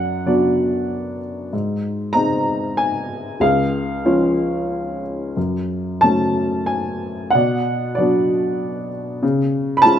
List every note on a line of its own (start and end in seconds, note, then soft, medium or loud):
0.00 1.49 F#2 soft
0.00 0.25 D5 medium
0.00 0.29 F#5 medium
0.26 1.49 F#3 soft
0.26 1.49 B3 soft
0.26 1.49 D4 soft
0.26 1.18 F#4 soft
0.26 1.18 D5 medium
1.53 3.37 G#2 medium
2.13 3.37 G#3 soft
2.13 3.38 C4 soft
2.13 3.38 D#4 soft
2.13 2.72 A#5 medium
2.77 3.37 G#5 medium
3.40 5.32 C#2 medium
3.40 4.33 G#4 medium
3.40 4.07 F5 medium
4.05 5.33 F3 soft
4.05 5.33 G#3 soft
4.05 5.33 C#4 soft
4.05 5.00 F4 soft
4.05 5.00 C#5 medium
5.37 7.30 F#2 soft
6.01 7.30 F#3 soft
6.01 7.30 A3 soft
6.01 7.30 C#4 soft
6.01 6.64 A5 medium
6.66 7.28 G#5 medium
7.30 9.19 B2 medium
7.30 7.92 F#5 medium
7.35 7.93 D5 medium
7.95 9.19 F#3 soft
7.95 9.19 B3 soft
7.95 9.19 D4 soft
7.95 8.86 D5 medium
8.00 8.89 F#4 soft
9.23 9.99 C#3 medium
9.77 9.84 B5 medium
9.82 9.99 G#3 soft
9.82 9.99 C#4 soft
9.82 9.99 F4 soft
9.82 9.99 A5 loud